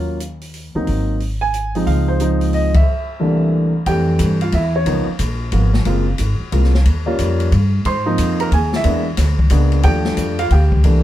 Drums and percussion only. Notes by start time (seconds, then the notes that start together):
0.20 closed hi-hat
0.41 open hi-hat
0.54 open hi-hat
0.87 kick, open hi-hat
1.20 open hi-hat
1.54 closed hi-hat
1.75 open hi-hat
1.87 kick, open hi-hat
2.20 closed hi-hat
2.41 open hi-hat
2.53 open hi-hat
2.74 kick, ride
3.86 kick, ride
4.19 kick, hi-hat pedal, ride
4.41 ride
4.52 kick, ride
4.86 kick, ride
5.19 kick, hi-hat pedal, ride
5.52 kick, ride
5.74 snare
5.85 kick, ride
6.18 kick, hi-hat pedal, ride
6.52 kick, ride
6.64 snare
6.74 snare
6.85 kick, ride
7.19 kick, hi-hat pedal, ride
7.40 ride
7.52 kick, ride
7.85 kick, ride
8.18 kick, hi-hat pedal, ride
8.40 ride
8.52 kick, ride
8.73 snare
8.84 kick, ride
9.17 kick, snare, hi-hat pedal, ride
9.39 kick
9.50 kick, hi-hat pedal, ride
9.72 ride
9.83 kick, ride
10.05 snare
10.17 kick, hi-hat pedal, ride
10.39 ride
10.50 kick, ride
10.72 kick
10.84 kick, ride